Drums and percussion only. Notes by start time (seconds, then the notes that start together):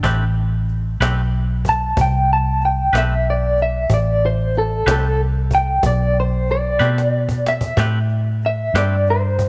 0.04 cajon bass
0.68 cajon slap
1.02 cajon slap
1.65 cajon bass
1.97 cajon bass
2.61 cajon slap
2.95 cajon slap
3.58 cajon slap
3.90 cajon bass
4.54 cajon slap
4.88 cajon slap
5.51 cajon bass, cajon slap
5.83 cajon bass
6.48 cajon slap
6.80 cajon slap
6.82 cajon slap
6.98 cajon slap
7.29 cajon bass
7.46 cajon slap
7.61 cajon bass
7.77 cajon bass
8.09 cajon slap
8.41 cajon slap
8.76 cajon slap
9.06 cajon slap
9.39 cajon bass, cajon slap